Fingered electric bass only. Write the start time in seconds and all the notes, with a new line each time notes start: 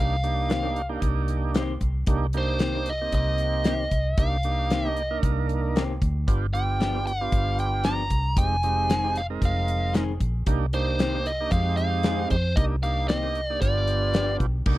Already playing: C2
1.02 C2
1.81 C2
2.07 C2
3.12 C2
3.91 C2
4.18 C2
5.23 C2
6.02 D2
6.28 G1
7.32 G1
8.10 C2
8.37 F1
9.42 F1
10.20 A#1
10.46 C2
11.52 F2
12.30 F2
12.57 C2
13.62 G1
14.40 B1
14.66 C2